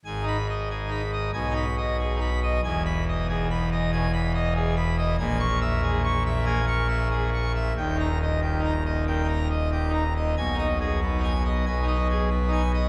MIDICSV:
0, 0, Header, 1, 2, 480
1, 0, Start_track
1, 0, Key_signature, 5, "minor"
1, 0, Tempo, 641026
1, 43, Time_signature, 4, 2, 24, 8
1, 5323, Tempo, 649351
1, 9594, End_track
2, 0, Start_track
2, 0, Title_t, "Pipe organ"
2, 0, Program_c, 0, 19
2, 35, Note_on_c, 0, 80, 60
2, 37, Note_on_c, 0, 32, 69
2, 40, Note_on_c, 0, 44, 65
2, 169, Note_on_c, 0, 63, 51
2, 184, Note_off_c, 0, 80, 0
2, 207, Note_on_c, 0, 83, 82
2, 276, Note_off_c, 0, 63, 0
2, 351, Note_off_c, 0, 83, 0
2, 370, Note_on_c, 0, 75, 60
2, 513, Note_off_c, 0, 75, 0
2, 530, Note_on_c, 0, 68, 60
2, 654, Note_on_c, 0, 63, 52
2, 672, Note_off_c, 0, 68, 0
2, 684, Note_on_c, 0, 83, 62
2, 759, Note_off_c, 0, 63, 0
2, 829, Note_off_c, 0, 83, 0
2, 843, Note_on_c, 0, 75, 58
2, 976, Note_off_c, 0, 32, 0
2, 978, Note_off_c, 0, 44, 0
2, 981, Note_off_c, 0, 75, 0
2, 1001, Note_on_c, 0, 80, 69
2, 1002, Note_on_c, 0, 47, 74
2, 1005, Note_on_c, 0, 35, 74
2, 1126, Note_on_c, 0, 63, 55
2, 1147, Note_off_c, 0, 80, 0
2, 1170, Note_on_c, 0, 83, 82
2, 1234, Note_off_c, 0, 63, 0
2, 1313, Note_off_c, 0, 83, 0
2, 1329, Note_on_c, 0, 75, 63
2, 1473, Note_off_c, 0, 75, 0
2, 1494, Note_on_c, 0, 68, 65
2, 1614, Note_on_c, 0, 63, 62
2, 1636, Note_off_c, 0, 68, 0
2, 1653, Note_on_c, 0, 83, 63
2, 1720, Note_off_c, 0, 63, 0
2, 1796, Note_off_c, 0, 83, 0
2, 1818, Note_on_c, 0, 75, 71
2, 1940, Note_off_c, 0, 47, 0
2, 1942, Note_off_c, 0, 35, 0
2, 1952, Note_off_c, 0, 75, 0
2, 1975, Note_on_c, 0, 40, 71
2, 1977, Note_on_c, 0, 80, 72
2, 1980, Note_on_c, 0, 28, 82
2, 2118, Note_off_c, 0, 80, 0
2, 2140, Note_on_c, 0, 83, 81
2, 2280, Note_off_c, 0, 83, 0
2, 2309, Note_on_c, 0, 75, 67
2, 2446, Note_off_c, 0, 75, 0
2, 2462, Note_on_c, 0, 68, 72
2, 2602, Note_off_c, 0, 68, 0
2, 2625, Note_on_c, 0, 83, 71
2, 2764, Note_off_c, 0, 83, 0
2, 2785, Note_on_c, 0, 75, 74
2, 2924, Note_off_c, 0, 75, 0
2, 2939, Note_on_c, 0, 80, 80
2, 2942, Note_on_c, 0, 47, 66
2, 3046, Note_off_c, 0, 47, 0
2, 3079, Note_off_c, 0, 80, 0
2, 3094, Note_on_c, 0, 83, 83
2, 3235, Note_off_c, 0, 83, 0
2, 3253, Note_on_c, 0, 75, 76
2, 3395, Note_off_c, 0, 75, 0
2, 3411, Note_on_c, 0, 68, 81
2, 3553, Note_off_c, 0, 68, 0
2, 3571, Note_on_c, 0, 83, 83
2, 3713, Note_off_c, 0, 83, 0
2, 3730, Note_on_c, 0, 75, 78
2, 3861, Note_off_c, 0, 40, 0
2, 3864, Note_off_c, 0, 28, 0
2, 3866, Note_off_c, 0, 75, 0
2, 3884, Note_on_c, 0, 80, 80
2, 3887, Note_on_c, 0, 34, 92
2, 3887, Note_on_c, 0, 46, 81
2, 4029, Note_off_c, 0, 80, 0
2, 4041, Note_on_c, 0, 85, 103
2, 4187, Note_off_c, 0, 85, 0
2, 4201, Note_on_c, 0, 76, 77
2, 4347, Note_off_c, 0, 76, 0
2, 4364, Note_on_c, 0, 68, 72
2, 4507, Note_off_c, 0, 68, 0
2, 4523, Note_on_c, 0, 85, 81
2, 4666, Note_off_c, 0, 85, 0
2, 4688, Note_on_c, 0, 76, 74
2, 4829, Note_off_c, 0, 76, 0
2, 4833, Note_on_c, 0, 58, 67
2, 4835, Note_on_c, 0, 80, 79
2, 4944, Note_off_c, 0, 58, 0
2, 4981, Note_off_c, 0, 80, 0
2, 4999, Note_on_c, 0, 85, 76
2, 5144, Note_off_c, 0, 85, 0
2, 5155, Note_on_c, 0, 76, 68
2, 5302, Note_off_c, 0, 76, 0
2, 5315, Note_on_c, 0, 68, 67
2, 5461, Note_off_c, 0, 68, 0
2, 5487, Note_on_c, 0, 85, 68
2, 5629, Note_off_c, 0, 85, 0
2, 5652, Note_on_c, 0, 76, 64
2, 5773, Note_off_c, 0, 34, 0
2, 5773, Note_off_c, 0, 46, 0
2, 5785, Note_off_c, 0, 76, 0
2, 5816, Note_on_c, 0, 39, 73
2, 5816, Note_on_c, 0, 79, 72
2, 5817, Note_on_c, 0, 27, 71
2, 5941, Note_on_c, 0, 63, 50
2, 5955, Note_off_c, 0, 79, 0
2, 5980, Note_on_c, 0, 82, 74
2, 6042, Note_off_c, 0, 63, 0
2, 6117, Note_off_c, 0, 82, 0
2, 6144, Note_on_c, 0, 75, 63
2, 6280, Note_off_c, 0, 75, 0
2, 6293, Note_on_c, 0, 67, 57
2, 6419, Note_on_c, 0, 63, 54
2, 6433, Note_off_c, 0, 67, 0
2, 6459, Note_on_c, 0, 82, 58
2, 6522, Note_off_c, 0, 63, 0
2, 6597, Note_off_c, 0, 82, 0
2, 6614, Note_on_c, 0, 75, 53
2, 6756, Note_off_c, 0, 75, 0
2, 6775, Note_on_c, 0, 46, 56
2, 6775, Note_on_c, 0, 79, 61
2, 6881, Note_off_c, 0, 46, 0
2, 6896, Note_on_c, 0, 63, 53
2, 6918, Note_off_c, 0, 79, 0
2, 6930, Note_on_c, 0, 82, 60
2, 7003, Note_off_c, 0, 63, 0
2, 7076, Note_off_c, 0, 82, 0
2, 7092, Note_on_c, 0, 75, 60
2, 7237, Note_off_c, 0, 75, 0
2, 7255, Note_on_c, 0, 67, 63
2, 7377, Note_on_c, 0, 63, 56
2, 7400, Note_off_c, 0, 67, 0
2, 7413, Note_on_c, 0, 82, 59
2, 7485, Note_off_c, 0, 63, 0
2, 7559, Note_off_c, 0, 82, 0
2, 7581, Note_on_c, 0, 75, 59
2, 7716, Note_off_c, 0, 27, 0
2, 7716, Note_off_c, 0, 39, 0
2, 7717, Note_off_c, 0, 75, 0
2, 7734, Note_on_c, 0, 80, 86
2, 7737, Note_on_c, 0, 35, 72
2, 7738, Note_on_c, 0, 47, 73
2, 7855, Note_on_c, 0, 63, 59
2, 7879, Note_off_c, 0, 80, 0
2, 7894, Note_on_c, 0, 75, 68
2, 7963, Note_off_c, 0, 63, 0
2, 8038, Note_off_c, 0, 75, 0
2, 8055, Note_on_c, 0, 68, 63
2, 8198, Note_off_c, 0, 68, 0
2, 8217, Note_on_c, 0, 59, 62
2, 8336, Note_on_c, 0, 63, 59
2, 8359, Note_off_c, 0, 59, 0
2, 8373, Note_on_c, 0, 80, 68
2, 8442, Note_off_c, 0, 63, 0
2, 8516, Note_off_c, 0, 80, 0
2, 8532, Note_on_c, 0, 75, 65
2, 8675, Note_off_c, 0, 35, 0
2, 8675, Note_off_c, 0, 75, 0
2, 8679, Note_off_c, 0, 47, 0
2, 8687, Note_on_c, 0, 80, 70
2, 8690, Note_on_c, 0, 35, 69
2, 8694, Note_on_c, 0, 47, 67
2, 8807, Note_on_c, 0, 63, 61
2, 8832, Note_off_c, 0, 80, 0
2, 8848, Note_on_c, 0, 75, 71
2, 8916, Note_off_c, 0, 63, 0
2, 8991, Note_off_c, 0, 75, 0
2, 9012, Note_on_c, 0, 68, 68
2, 9153, Note_off_c, 0, 68, 0
2, 9166, Note_on_c, 0, 59, 65
2, 9292, Note_on_c, 0, 63, 64
2, 9309, Note_off_c, 0, 59, 0
2, 9326, Note_on_c, 0, 80, 70
2, 9396, Note_off_c, 0, 63, 0
2, 9468, Note_off_c, 0, 80, 0
2, 9484, Note_on_c, 0, 75, 69
2, 9594, Note_off_c, 0, 35, 0
2, 9594, Note_off_c, 0, 47, 0
2, 9594, Note_off_c, 0, 75, 0
2, 9594, End_track
0, 0, End_of_file